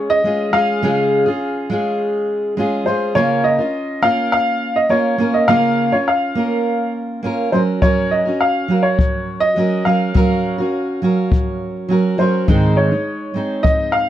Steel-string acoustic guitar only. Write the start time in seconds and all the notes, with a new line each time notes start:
Already playing: G#3 C#4 F4 G#4
0.24 G#3 C#4 F4 G#4
0.53 G#3 C#4 F4 G#4
0.83 C#3 G#3 C#4 F4 G#4
1.26 C#4 F4 G#4
1.70 G#3 C#4 F4 G#4
2.57 G#3 C#4 F4 G#4
2.86 G#3 C#4 F4 G#4
3.15 C#3 A#3 C#4 F4 A#4
3.58 C#4 F4 A#4
4.02 A#3 C#4 F4 A#4
4.89 A#3 C#4 F4 A#4
5.18 A#3 C#4 F4 A#4
5.48 C#3 A#3 C#4 F4 A#4
5.92 C#4 F4 A#4
6.35 A#3 C#4 F4 A#4
7.23 A#3 C#4 F4 A#4
7.52 F#3 C#4 F#4 A#4
7.82 F#3 C#4 F#4 A#4
8.25 C#4 F#4 A#4
8.68 F#3 C#4 F#4 A#4
9.56 F#3 C#4 F#4 A#4
9.85 F#3 C#4 F#4 A#4
10.14 F#3 C#4 F#4 A#4
10.58 C#4 F#4 A#4
11.02 F#3 C#4 F#4 A#4
11.89 F#3 C#4 F#4 A#4
12.18 F#3 C#4 F#4 A#4
12.48 G#2 D#3 G#3 C4 D#4 C5
12.92 G#3 D#4
13.34 G#3 C4 D#4 C5